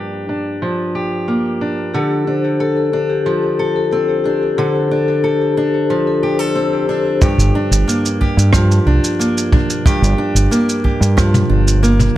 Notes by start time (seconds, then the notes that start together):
Already playing: G2 F3 A#3 D4 G4
0.29 D4
0.62 F3
0.95 G4
1.28 A#3
1.61 D4
1.94 D3 G4 A4
2.10 G4
2.27 D4 C5
2.44 G4
2.60 A4
2.77 A4
2.93 D4 G4
3.10 G4
3.26 F3 G4
3.42 C5
3.59 G4 A4
3.76 A4
3.92 C4 A4
4.08 G4
4.24 D4 G4
4.41 G4
4.58 D3 A4 C5
4.75 G4
4.91 D4 A4
5.09 A4
5.24 G4 A4
5.42 G4
5.57 D4 G4
5.74 C5
5.90 F3 G4
6.07 A4
6.23 G4 C5
6.39 F4 A4
6.55 C4 C5
6.73 G4
6.89 D4 A4
7.07 G4
7.21 G2 G4, kick, shaker
7.38 G1, shaker
7.55 D4
7.71 G1, shaker
7.88 A#3, shaker
8.06 shaker
8.21 G4, kick
8.37 G2, shaker
8.53 F3, kick, cross-stick, shaker
8.72 shaker
8.86 C2 D4
9.04 shaker
9.19 A#3, shaker
9.38 shaker
9.52 D4, kick, mid tom
9.70 shaker
9.86 G2 G4, kick, shaker
10.02 G1, shaker
10.18 D4
10.35 G1, shaker
10.51 A#3, shaker
10.69 shaker
10.84 G4, kick
11.01 G2, shaker
11.17 F3, kick, cross-stick, shaker
11.34 mid tom, shaker
11.49 G1 D4
11.68 shaker
11.83 A#3, shaker
11.99 mid tom, shaker